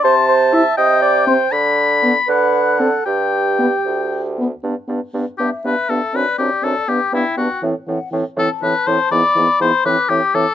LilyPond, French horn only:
\new Staff \with { instrumentName = "French horn" } { \time 6/8 \key g \major \tempo 4. = 80 r4 e'16 r4 r16 c'16 r16 | r4 b16 r4 r16 c'16 r16 | r4 b16 r4 r16 b16 r16 | b8 b8 b8 b8 b8 b8 |
c'8 c'8 c'8 b8 b8 b8 | e8 e8 e8 e8 e8 e8 | e8 e8 e8 e8 e8 e8 | }